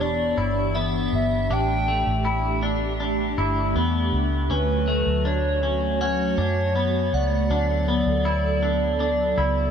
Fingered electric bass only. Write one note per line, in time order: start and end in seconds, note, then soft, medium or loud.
0.00 0.34 E1 medium
0.38 1.09 G1 medium
1.13 1.49 G1 medium
1.50 2.04 A1 medium
2.07 3.34 A1 medium
3.38 3.74 G1 medium
3.75 4.11 E2 medium
4.13 4.49 C#2 medium
4.50 5.04 D2 medium
5.07 6.34 D2 medium
6.38 7.09 F#2 medium
7.13 7.49 C#2 medium
7.50 8.04 D2 medium
8.06 9.34 D2 medium
9.38 9.71 C#2 medium